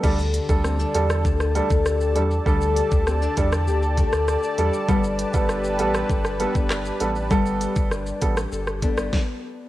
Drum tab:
CC |x---------------|----------------|----------------|----------------|
HH |--x---x---x---x-|--x---x---x---x-|--x---x---x---x-|--x---x---x-----|
SH |xxxxxxxxxxxxxxxx|xxxxxxxxxxxxxxxx|xxxxxxxxxxxxxxxx|xxxxxxxxxxxx----|
CP |----------------|----------------|------------x---|----------------|
SD |----r--r-r--r---|----r--r---rr---|----r--r-r--r---|----r--r-r-ro---|
BD |o--o----o--o----|o--o--o---o-----|o--o----o--o----|o--o--o---o-o---|